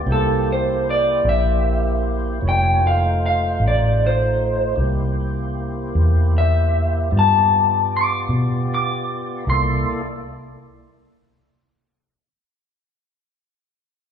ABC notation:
X:1
M:12/8
L:1/8
Q:3/8=51
K:Cmix
V:1 name="Clean electric guitar"
A c d e3 g f f d c2 | z4 e2 a2 d'2 d'2 | c' z8 z3 |]
V:2 name="Tonewheel organ"
[B,EGc]6 [^F,B,E_d] [A,_E=Fc]4- [A,EFc] | [B,EGc]6 [=B,FGd]6 | [B,EAd] z8 z3 |]
V:3 name="Fingered electric bass" clef=bass
C,,3 B,,,3 F,,,3 A,,,3 | C,,3 E,,3 G,,3 =B,,3 | C,, z8 z3 |]